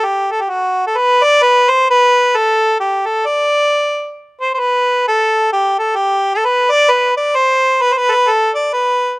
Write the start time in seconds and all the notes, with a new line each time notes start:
0.05 G4
0.31 A4
0.41 G4
0.50 F#4
0.87 A4
0.97 B4
1.23 D5
1.43 B4
1.70 C5
1.91 B4
2.36 A4
2.80 G4
3.06 A4
3.26 D5
4.41 C5
4.54 C5
4.60 B4
5.08 A4
5.53 G4
5.79 A4
5.96 G4
6.34 A4
6.45 B4
6.71 D5
6.91 B4
7.17 D5
7.36 C5
7.81 B4
7.93 C5
7.98 B4
8.09 A4 B4
8.27 A4
8.55 D5
8.73 B4